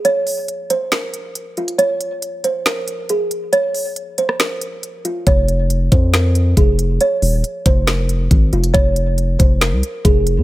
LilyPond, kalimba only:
\new Staff \with { instrumentName = "Kalimba" } { \time 4/4 \key f \minor \tempo 4 = 138 des''4. c''8 bes'4. f'8 | des''4. c''8 bes'4 aes'8 r8 | des''4. c''8 bes'4. f'8 | des''4. c''8 bes'4 aes'8 r8 |
des''4. c''8 bes'4. f'8 | des''4. c''8 bes'4 aes'8 r8 | }